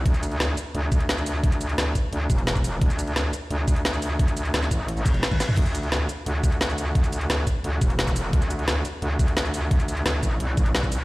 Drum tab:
CC |----------------|----------------|----------------|----------------|
HH |xxxxx-x-x-xxx-o-|xxxxx-x-x-xxx-o-|xxxxx-x-x-xxx-o-|xxxxx-x-x-xxx-o-|
SH |-xx---x---x--xx-|-xx---x---x--xx-|-xx---x---x--xx-|-xx--xx--xx--xx-|
SD |----o-------o---|----o-------o---|----o-------o---|----oo------o-o-|
T1 |----------------|----------------|----------------|-------------o--|
T2 |----------------|----------------|----------------|---------------o|
BD |o---------o-----|o-----o---o--o--|o---------o-----|o-----o---o--o--|

CC |x---------------|----------------|----------------|----------------|
HH |xxxxx-x-x-xxx-o-|xxxxx-x-x-xxx-o-|xxxxx-x-x-xxx-o-|xxxxx-x-x-xxx-o-|
SH |-xx---x---x--xx-|-xx---x---x--xx-|-xx---x---x--xx-|-xx---x---x--xx-|
SD |----o-------o---|----o-------o---|----o-------o---|----o-------o---|
T1 |----------------|----------------|----------------|----------------|
T2 |----------------|----------------|----------------|----------------|
BD |o---------o-----|o-----o---o--o--|o---------o-----|o-----o---o--o--|